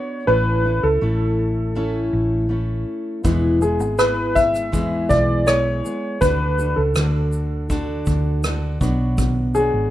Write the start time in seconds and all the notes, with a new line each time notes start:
Already playing: B3 D4 F#4 C#5
0.27 A1 A2 A3 C#4 E4 A4 B4
0.64 C#4 E4 A4
0.83 C#2 A4
1.01 A1 A3 C#4 E4 A4
1.75 A2 A3 C#4 E4 A4
2.13 A1
2.49 A3 C#4 E4 A4
3.23 E1 E2 E3 G#3 B3 E4 G#4, kick, shaker
3.61 G#3 B3 E4 G#4, shaker
3.80 G#1, shaker
3.98 G#3 B3 E4 G#4 B4, cross-stick, shaker
4.35 E5, kick, shaker
4.55 cross-stick, shaker
4.72 E2 E3 G#3 B3 E4 G#4, kick, shaker
5.09 B1 D5, kick, shaker
5.46 G#3 B3 E4 G#4 C#5, cross-stick, shaker
5.84 G#3 B3 E4 G#4, shaker
6.21 D2 D3 D4 F#4 A4 B4, kick, shaker
6.58 D4 F#4 A4, shaker
6.76 C#2 A4
6.95 D2 D3 D4 F#4 A4, cross-stick, shaker
7.32 shaker
7.70 D3 D4 F#4 A4, kick, shaker
8.06 D2, kick, shaker
8.44 D3 D4 F#4 A4, cross-stick, shaker
8.81 B1 B2 F#3 B3 D4 F#4 C#5, kick, shaker
9.18 kick, shaker
9.55 B3 D4 F#4 G#4 C#5, shaker
9.74 G#1